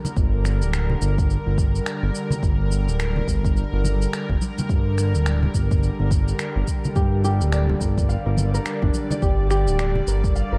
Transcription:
Already playing: synth drone D3 G3 A#4
0.05 muted conga, low conga, cabasa
0.17 analog synth bass G1, kick, cabasa
0.45 finger snap, muted conga, cabasa
0.62 analog synth bass D1, cabasa
0.73 finger snap, cabasa
0.90 low conga
1.01 analog synth bass G1, cabasa
1.18 kick, high conga, cabasa
1.30 cabasa
1.47 analog synth bass G1
1.58 kick, cabasa
1.75 cabasa
1.86 finger snap, cabasa
2.03 analog synth bass G1
2.15 cabasa
2.30 low conga, cabasa
2.43 analog synth bass G1, kick, cabasa
2.70 muted conga, cabasa
2.88 analog synth bass D1, cabasa
3.00 finger snap, cabasa
3.16 low conga
3.28 analog synth bass G1, kick, cabasa
3.45 kick, high conga, cabasa
3.57 cabasa
3.73 analog synth bass G1
3.84 high conga, low conga, cabasa
4.02 cabasa
4.13 finger snap, cabasa
4.29 analog synth bass G1, kick, muted conga
4.41 high conga, cabasa
4.58 muted conga, low conga, cabasa
4.69 analog synth bass G1, kick, cabasa
4.98 finger snap, muted conga, cabasa
5.15 analog synth bass D1, cabasa
5.26 finger snap, cabasa
5.43 low conga
5.54 analog synth bass G1, kick, cabasa
5.71 kick, high conga, cabasa
5.83 cabasa
5.99 analog synth bass G1, high conga
6.11 kick, cabasa
6.28 cabasa
6.39 finger snap, cabasa
6.56 analog synth bass G1
6.68 kick, cabasa
6.85 low conga, cabasa
6.96 analog synth bass G1, harp G4, synth drone D5, kick, cabasa
7.24 harp G4, muted conga, cabasa
7.41 analog synth bass D1, cabasa
7.52 harp D5, finger snap, cabasa
7.70 low conga
7.81 analog synth bass G1, harp A#4, kick, cabasa
7.98 kick, high conga, cabasa
8.09 harp F5, cabasa
8.26 analog synth bass G1, harp A#4
8.37 high conga, low conga, cabasa
8.54 harp A#4, cabasa
8.66 finger snap, cabasa
8.82 analog synth bass G1, harp D4, kick, muted conga
8.94 high conga, cabasa
9.11 harp D5, muted conga, low conga, cabasa
9.22 analog synth bass G1, harp G4, kick, cabasa
9.50 harp G4, finger snap, muted conga, cabasa
9.67 analog synth bass D1, cabasa
9.79 harp D5, finger snap, cabasa
9.95 low conga
10.07 analog synth bass G1, harp A#4, cabasa
10.23 kick, high conga, cabasa
10.35 harp F5, cabasa
10.52 analog synth bass G1, harp A#4

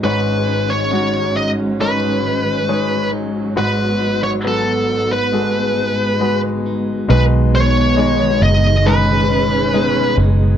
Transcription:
Already playing: string section G#2, clean electric guitar B3 D#4
0.03 grand piano G#1 G#2 G#3 D#4 C#5, clean electric guitar G#2 G#4, string section D#3 G#3 C#4, lead electric guitar B4
0.48 clean electric guitar D#4
0.70 lead electric guitar C#5
0.91 grand piano G#3 D#4 F#4, clean electric guitar C#4
1.37 clean electric guitar D#4, lead electric guitar D#5
1.80 string section F#3, grand piano G#3 D#4 C#5, clean electric guitar G#4, lead electric guitar B4
2.24 clean electric guitar D#4
2.68 grand piano G#3 D#4 C#5, clean electric guitar G#4
3.13 clean electric guitar D#4
3.56 grand piano G#1 G#2 G#3 F#4 B4, clean electric guitar G#2, string section B3, lead electric guitar B4
4.01 clean electric guitar D#4
4.24 lead electric guitar C#5
4.43 grand piano F#3 F#4 B4, clean electric guitar B3
4.48 lead electric guitar A4
4.89 clean electric guitar D#4
5.13 lead electric guitar B4
5.32 string section G#3, grand piano G#3 F#4 A4, clean electric guitar G#4
5.40 grand piano B4
5.77 clean electric guitar D#4
6.20 grand piano G#3 F#4 B4, clean electric guitar G#4
6.66 clean electric guitar D#4
7.09 fingered electric bass B1, grand piano B2 G#3 D#4 B4, clean electric guitar B2 G#4, string section D#3 G#3 B3, lead electric guitar B4
7.55 clean electric guitar D#4, lead electric guitar C#5
7.96 grand piano G#3 D#4 C#5, clean electric guitar G#4
8.41 fingered electric bass F#1, clean electric guitar D#4, lead electric guitar D#5
8.85 grand piano G#3 D#4 B4, string section C#4, clean electric guitar G#4, lead electric guitar B4
9.31 clean electric guitar D#4
9.73 grand piano G#3 D#4 B4, clean electric guitar B3
10.18 fingered electric bass F#1, clean electric guitar D#4

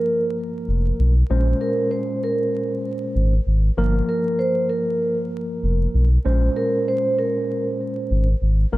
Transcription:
Already playing: tine electric piano G2 F3 A#3 A#4, vibraphone A#4
0.68 sub bass F1
0.99 sub bass B1
1.30 sub bass A#1, tine electric piano A#2 G#3 C#4 C5
1.61 vibraphone A#4
1.91 vibraphone C5
2.24 vibraphone A#4
3.16 sub bass G#1
3.47 sub bass G#1
3.77 sub bass G1, tine electric piano G2 F3 A#3 A#4
4.09 vibraphone A#4
4.39 vibraphone C5
4.69 vibraphone A#4
5.63 sub bass F1
5.94 sub bass B1
6.25 sub bass A#1, tine electric piano A#2 G#3 C#4 C5
6.56 vibraphone A#4
6.88 vibraphone C5
7.19 vibraphone A#4
8.11 sub bass G#1
8.42 sub bass G#1
8.72 sub bass G1, tine electric piano G2 F3 A#3 A#4

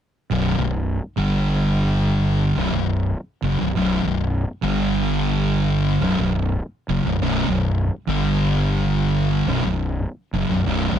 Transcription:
0.31 fingered electric bass B0, distorted electric guitar B1 F#2
0.57 fingered electric bass B0, distorted electric guitar B1 F#2
1.17 fingered electric bass G1, distorted electric guitar G2 D3 G3
2.57 fingered electric bass B0, distorted electric guitar B1 F#2
2.73 fingered electric bass B0, distorted electric guitar B1 F#2
3.43 fingered electric bass F#1, distorted electric guitar F#2 C#3
3.60 fingered electric bass B0, distorted electric guitar B1 F#2
3.77 fingered electric bass B0, distorted electric guitar B1 F#2
4.04 fingered electric bass B0, distorted electric guitar B1 F#2
4.63 fingered electric bass G1, distorted electric guitar G2 D3 G3
6.02 fingered electric bass B0, distorted electric guitar B1 F#2
6.18 fingered electric bass B0, distorted electric guitar B1 F#2
6.89 fingered electric bass F#1, distorted electric guitar F#2 C#3
7.04 fingered electric bass B0, distorted electric guitar B1 F#2
7.21 fingered electric bass B0, distorted electric guitar B1 F#2
7.47 fingered electric bass B0, distorted electric guitar B1 F#2
8.07 fingered electric bass G1, distorted electric guitar G2 D3 G3
9.47 fingered electric bass B0, distorted electric guitar B1 F#2
9.64 fingered electric bass B0, distorted electric guitar B1 F#2
10.33 fingered electric bass F#1, distorted electric guitar F#2 C#3
10.49 fingered electric bass B0, distorted electric guitar B1 F#2
10.65 fingered electric bass B0, distorted electric guitar B1 F#2
10.92 fingered electric bass B0, distorted electric guitar B1 F#2

